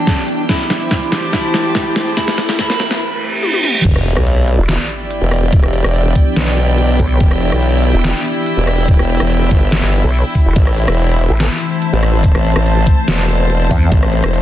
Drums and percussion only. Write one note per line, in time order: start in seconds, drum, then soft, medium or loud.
0.07 kick loud
0.07 snare medium
0.07 closed hi-hat medium
0.28 open hi-hat medium
0.49 kick medium
0.49 snare medium
0.49 closed hi-hat medium
0.70 snare medium
0.70 closed hi-hat medium
0.91 kick medium
0.91 snare medium
0.91 closed hi-hat medium
1.12 snare medium
1.12 closed hi-hat medium
1.33 kick loud
1.33 snare medium
1.33 closed hi-hat medium
1.54 snare medium
1.54 closed hi-hat medium
1.75 kick loud
1.75 snare medium
1.75 closed hi-hat medium
1.96 snare medium
1.96 open hi-hat medium
2.17 kick loud
2.17 snare medium
2.17 closed hi-hat medium
2.28 snare medium
2.38 snare loud
2.38 closed hi-hat medium
2.49 snare medium
2.59 kick medium
2.59 snare medium
2.59 closed hi-hat medium
2.70 snare medium
2.80 snare loud
2.80 closed hi-hat medium
2.91 snare medium
3.43 high tom medium
3.54 high tom medium
3.64 mid tom medium
3.75 mid tom medium
3.85 kick loud
3.85 closed hi-hat medium
3.85 crash loud
3.96 cross-stick soft
4.06 closed hi-hat medium
4.17 cross-stick medium
4.27 closed hi-hat medium
4.48 closed hi-hat medium
4.69 snare loud
4.69 closed hi-hat medium
4.90 closed hi-hat medium
5.11 closed hi-hat medium
5.32 cross-stick medium
5.32 open hi-hat loud
5.52 kick loud
5.52 closed hi-hat medium
5.63 cross-stick soft
5.74 closed hi-hat medium
5.84 cross-stick medium
5.95 closed hi-hat medium
6.15 kick medium
6.15 closed hi-hat medium
6.36 snare loud
6.36 closed hi-hat medium
6.57 closed hi-hat medium
6.78 closed hi-hat medium
6.99 kick medium
6.99 open hi-hat loud
7.20 kick loud
7.20 closed hi-hat medium
7.31 cross-stick soft
7.41 closed hi-hat medium
7.52 cross-stick medium
7.62 closed hi-hat medium
7.83 closed hi-hat medium
8.04 snare loud
8.04 closed hi-hat medium
8.25 closed hi-hat medium
8.46 closed hi-hat medium
8.67 cross-stick medium
8.67 open hi-hat medium
8.88 kick loud
8.88 closed hi-hat medium
8.99 cross-stick medium
9.09 closed hi-hat medium
9.20 cross-stick medium
9.30 closed hi-hat medium
9.51 kick medium
9.51 open hi-hat medium
9.72 snare loud
9.72 closed hi-hat medium
9.93 closed hi-hat medium
10.14 closed hi-hat medium
10.35 kick medium
10.35 open hi-hat medium
10.56 kick loud
10.56 closed hi-hat medium
10.67 cross-stick medium
10.77 closed hi-hat soft
10.88 cross-stick medium
10.98 closed hi-hat medium
11.19 closed hi-hat medium
11.40 snare loud
11.40 closed hi-hat medium
11.61 closed hi-hat medium
11.82 closed hi-hat medium
12.03 cross-stick medium
12.03 open hi-hat medium
12.24 kick loud
12.24 closed hi-hat medium
12.35 cross-stick medium
12.45 closed hi-hat medium
12.56 cross-stick medium
12.66 closed hi-hat medium
12.87 kick medium
12.87 closed hi-hat medium
13.08 snare loud
13.08 closed hi-hat medium
13.29 closed hi-hat medium
13.50 closed hi-hat medium
13.71 kick medium
13.71 open hi-hat medium
13.92 kick loud
13.92 closed hi-hat medium
14.03 cross-stick medium
14.13 closed hi-hat soft
14.24 cross-stick medium
14.34 closed hi-hat medium